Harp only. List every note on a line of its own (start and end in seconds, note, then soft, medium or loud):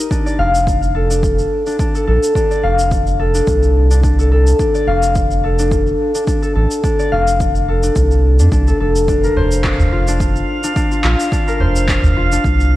0.00 0.16 D#4 medium
0.00 1.62 G4 medium
0.00 1.01 A#4 medium
0.00 0.16 D#5 medium
0.10 1.10 D4 medium
0.26 2.11 D5 medium
0.39 2.05 F5 medium
0.95 1.94 A4 medium
1.10 1.66 D4 medium
1.66 1.79 D4 medium
1.79 2.35 D4 medium
1.95 2.07 A4 medium
2.07 3.19 A4 medium
2.35 3.34 D4 medium
2.51 4.35 D5 medium
2.63 4.30 F5 medium
3.19 4.18 A4 medium
3.35 3.90 D4 medium
3.91 4.03 D4 medium
4.03 4.59 D4 medium
4.19 4.31 A4 medium
4.32 5.43 A4 medium
4.59 5.59 D4 medium
4.75 6.59 D5 medium
4.87 6.54 F5 medium
5.44 6.42 A4 medium
5.59 6.14 D4 medium
6.15 6.27 D4 medium
6.27 6.83 D4 medium
6.42 6.55 A4 medium
6.55 7.68 A4 medium
6.83 7.83 D4 medium
6.99 8.84 D5 medium
7.12 8.78 F5 medium
7.68 8.67 A4 medium
7.83 8.39 D4 medium
8.40 8.52 D4 medium
8.52 9.08 D4 medium
8.67 8.80 A4 medium
8.80 9.30 A4 medium
9.08 10.07 D4 medium
9.24 11.36 A#4 medium
9.37 11.35 C5 medium
9.92 10.91 F4 medium
10.08 10.63 D4 medium
10.64 10.76 D4 medium
10.76 11.32 D4 medium
10.92 11.04 F4 medium
11.04 12.16 F4 medium
11.32 12.32 D4 medium
11.48 12.76 A#4 medium
11.60 12.76 C5 medium
12.16 12.76 F4 medium
12.32 12.76 D4 medium